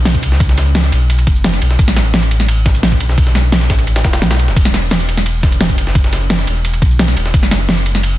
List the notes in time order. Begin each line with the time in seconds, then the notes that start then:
Already playing: B1
0.05 snare, closed hi-hat, ride, cabasa
0.14 kick, ride
0.23 C#2, closed hi-hat, ride
0.32 snare
0.40 kick, closed hi-hat, ride, cabasa
0.49 snare
0.58 snare, closed hi-hat, ride
0.75 snare, closed hi-hat, ride, cabasa
0.84 snare, cabasa
0.92 B1, closed hi-hat, ride, cabasa
1.10 closed hi-hat, ride, cabasa
1.19 ride
1.27 F#1, kick, closed hi-hat, ride
1.36 cabasa
1.44 snare, closed hi-hat, ride, cabasa
1.53 snare, ride
1.62 B1, closed hi-hat, ride
1.71 snare
1.79 A1, kick, closed hi-hat, ride, cabasa
1.88 snare
1.96 snare, closed hi-hat, ride
2.14 snare, closed hi-hat, ride, cabasa
2.23 ride, cabasa
2.31 closed hi-hat, ride, cabasa
2.40 snare
2.49 closed hi-hat, ride, cabasa
2.66 kick, snare, closed hi-hat, ride
2.75 ride, cabasa
2.83 snare, closed hi-hat, ride, cabasa
2.92 kick, ride
3.00 B1, closed hi-hat, ride
3.09 snare
3.18 kick, closed hi-hat, ride, cabasa
3.27 snare
3.35 snare, closed hi-hat, ride
3.52 snare, closed hi-hat, ride, cabasa
3.61 snare, cabasa
3.70 A1, kick, snare, closed hi-hat, ride, cabasa
3.79 ride
3.87 closed hi-hat, ride, cabasa
3.96 snare, ride
4.04 E1, kick, snare, closed hi-hat, ride, cabasa
4.13 snare, ride, cabasa
4.22 B1, snare, closed hi-hat, ride, cabasa
4.31 snare, ride
4.39 closed hi-hat, ride, cabasa
4.48 E1, snare, cabasa
4.56 E1, kick, closed hi-hat, crash, ride, cabasa
4.65 snare
4.74 snare, closed hi-hat, ride
4.91 snare, closed hi-hat, ride, cabasa
5.00 ride, cabasa
5.09 closed hi-hat, ride, cabasa
5.17 snare
5.26 closed hi-hat, ride, cabasa
5.43 kick, snare, closed hi-hat, ride
5.52 ride, cabasa
5.61 snare, closed hi-hat, ride, cabasa
5.69 kick, ride
5.78 F#1, closed hi-hat, ride
5.87 snare
5.95 kick, closed hi-hat, ride, cabasa
6.04 snare
6.13 snare, closed hi-hat, ride
6.30 snare, closed hi-hat, ride, cabasa
6.39 snare, cabasa
6.47 E1, closed hi-hat, ride, cabasa
6.65 closed hi-hat, ride, cabasa
6.74 ride
6.82 B1, kick, closed hi-hat, ride
6.91 cabasa
6.99 snare, closed hi-hat, ride, cabasa
7.08 snare, ride
7.17 E1, closed hi-hat, ride
7.26 snare
7.34 F#1, kick, closed hi-hat, ride, cabasa
7.43 snare
7.51 snare, closed hi-hat, ride
7.69 snare, closed hi-hat, ride, cabasa
7.77 ride, cabasa
7.86 closed hi-hat, ride, cabasa
7.95 snare
8.03 closed hi-hat, ride, cabasa